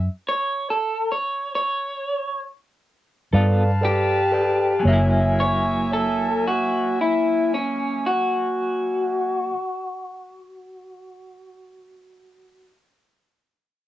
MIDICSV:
0, 0, Header, 1, 6, 480
1, 0, Start_track
1, 0, Tempo, 841515
1, 1115, Tempo, 906344
1, 1595, Tempo, 960000
1, 2075, Tempo, 1027397
1, 2554, Time_signature, 12, 3, 24, 8
1, 2555, Tempo, 1063830
1, 6630, End_track
2, 0, Start_track
2, 0, Title_t, "Horn section"
2, 0, Program_c, 0, 61
2, 0, Note_on_c, 0, 76, 55
2, 60, Note_off_c, 0, 76, 0
2, 1836, Note_on_c, 0, 71, 68
2, 1839, Note_on_c, 0, 77, 65
2, 1839, Note_on_c, 0, 81, 71
2, 2550, Note_off_c, 0, 71, 0
2, 2551, Note_off_c, 0, 77, 0
2, 2551, Note_off_c, 0, 81, 0
2, 2556, Note_on_c, 0, 76, 71
2, 2559, Note_on_c, 0, 58, 58
2, 2559, Note_on_c, 0, 80, 65
2, 4668, Note_off_c, 0, 76, 0
2, 4671, Note_off_c, 0, 58, 0
2, 4671, Note_off_c, 0, 80, 0
2, 6630, End_track
3, 0, Start_track
3, 0, Title_t, "Tine electric piano"
3, 0, Program_c, 1, 4
3, 1829, Note_on_c, 1, 69, 47
3, 1831, Note_on_c, 1, 71, 42
3, 1836, Note_on_c, 1, 74, 44
3, 1837, Note_on_c, 1, 77, 50
3, 2012, Note_off_c, 1, 69, 0
3, 2013, Note_off_c, 1, 71, 0
3, 2015, Note_off_c, 1, 74, 0
3, 2016, Note_off_c, 1, 77, 0
3, 2071, Note_on_c, 1, 69, 48
3, 2074, Note_on_c, 1, 71, 41
3, 2077, Note_on_c, 1, 74, 41
3, 2081, Note_on_c, 1, 79, 51
3, 2249, Note_off_c, 1, 69, 0
3, 2250, Note_off_c, 1, 71, 0
3, 2252, Note_off_c, 1, 74, 0
3, 2254, Note_off_c, 1, 79, 0
3, 2306, Note_on_c, 1, 69, 48
3, 2309, Note_on_c, 1, 71, 45
3, 2313, Note_on_c, 1, 74, 42
3, 2317, Note_on_c, 1, 79, 57
3, 2490, Note_off_c, 1, 69, 0
3, 2492, Note_off_c, 1, 71, 0
3, 2494, Note_off_c, 1, 74, 0
3, 2496, Note_off_c, 1, 79, 0
3, 2535, Note_on_c, 1, 80, 58
3, 2546, Note_on_c, 1, 58, 50
3, 2557, Note_on_c, 1, 73, 51
3, 2571, Note_on_c, 1, 76, 60
3, 4648, Note_off_c, 1, 80, 0
3, 4659, Note_off_c, 1, 58, 0
3, 4669, Note_off_c, 1, 73, 0
3, 4684, Note_off_c, 1, 76, 0
3, 6630, End_track
4, 0, Start_track
4, 0, Title_t, "Clean electric guitar"
4, 0, Program_c, 2, 27
4, 162, Note_on_c, 2, 73, 83
4, 383, Note_off_c, 2, 73, 0
4, 400, Note_on_c, 2, 69, 67
4, 623, Note_off_c, 2, 69, 0
4, 636, Note_on_c, 2, 73, 69
4, 866, Note_off_c, 2, 73, 0
4, 886, Note_on_c, 2, 73, 74
4, 1347, Note_off_c, 2, 73, 0
4, 2088, Note_on_c, 2, 67, 78
4, 2547, Note_off_c, 2, 67, 0
4, 2804, Note_on_c, 2, 73, 73
4, 3032, Note_off_c, 2, 73, 0
4, 3045, Note_on_c, 2, 69, 77
4, 3272, Note_off_c, 2, 69, 0
4, 3289, Note_on_c, 2, 66, 68
4, 3515, Note_off_c, 2, 66, 0
4, 3531, Note_on_c, 2, 64, 67
4, 3756, Note_off_c, 2, 64, 0
4, 3770, Note_on_c, 2, 61, 67
4, 3995, Note_off_c, 2, 61, 0
4, 4006, Note_on_c, 2, 66, 86
4, 6100, Note_off_c, 2, 66, 0
4, 6630, End_track
5, 0, Start_track
5, 0, Title_t, "Clean electric guitar"
5, 0, Program_c, 3, 27
5, 1828, Note_on_c, 3, 69, 44
5, 1835, Note_on_c, 3, 65, 45
5, 1844, Note_on_c, 3, 59, 40
5, 1975, Note_off_c, 3, 69, 0
5, 1978, Note_off_c, 3, 65, 0
5, 1982, Note_off_c, 3, 59, 0
5, 2529, Note_on_c, 3, 54, 71
5, 2566, Note_on_c, 3, 58, 69
5, 2590, Note_on_c, 3, 64, 69
5, 4661, Note_off_c, 3, 54, 0
5, 4696, Note_off_c, 3, 58, 0
5, 4721, Note_off_c, 3, 64, 0
5, 6630, End_track
6, 0, Start_track
6, 0, Title_t, "Fingered electric bass"
6, 0, Program_c, 4, 33
6, 1831, Note_on_c, 4, 43, 75
6, 2536, Note_off_c, 4, 43, 0
6, 2555, Note_on_c, 4, 30, 70
6, 4667, Note_off_c, 4, 30, 0
6, 6630, End_track
0, 0, End_of_file